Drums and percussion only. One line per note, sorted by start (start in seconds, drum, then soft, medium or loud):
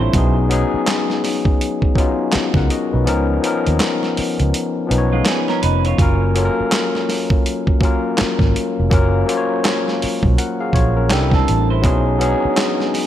0.14 kick loud
0.14 closed hi-hat medium
0.51 closed hi-hat medium
0.88 snare loud
0.88 clap loud
0.88 closed hi-hat medium
1.10 snare soft
1.24 snare soft
1.24 open hi-hat medium
1.45 kick loud
1.61 closed hi-hat medium
1.82 kick medium
1.96 kick medium
1.96 closed hi-hat medium
2.33 snare loud
2.33 clap loud
2.33 closed hi-hat medium
2.54 kick medium
2.54 snare soft
2.70 closed hi-hat medium
3.07 closed hi-hat medium
3.44 closed hi-hat medium
3.67 closed hi-hat soft
3.80 snare loud
3.80 clap loud
3.80 closed hi-hat medium
4.03 snare soft
4.17 open hi-hat medium
4.40 closed hi-hat soft
4.54 closed hi-hat medium
4.91 closed hi-hat medium
5.26 snare loud
5.26 clap loud
5.26 closed hi-hat medium
5.48 snare soft
5.63 closed hi-hat medium
5.85 closed hi-hat soft
5.98 kick loud
5.98 closed hi-hat medium
6.36 closed hi-hat medium
6.72 snare loud
6.72 clap loud
6.72 closed hi-hat medium
6.95 snare soft
7.09 snare soft
7.09 open hi-hat medium
7.30 kick loud
7.46 closed hi-hat medium
7.67 kick medium
7.81 kick medium
7.81 closed hi-hat medium
8.18 snare loud
8.18 clap loud
8.18 closed hi-hat medium
8.39 kick medium
8.39 snare soft
8.56 closed hi-hat medium
8.91 kick loud
8.91 closed hi-hat medium
9.29 closed hi-hat medium
9.65 snare loud
9.65 clap loud
9.65 closed hi-hat medium
9.88 snare soft
10.02 open hi-hat medium
10.23 kick loud
10.38 closed hi-hat medium
10.73 kick medium
10.73 closed hi-hat medium
11.11 snare loud
11.11 clap loud
11.11 closed hi-hat medium
11.32 kick loud
11.32 snare soft
11.48 closed hi-hat medium
11.84 kick loud
11.84 closed hi-hat medium
12.21 closed hi-hat medium
12.57 snare loud
12.57 clap loud
12.57 closed hi-hat medium
12.80 snare soft
12.94 snare soft
12.94 open hi-hat medium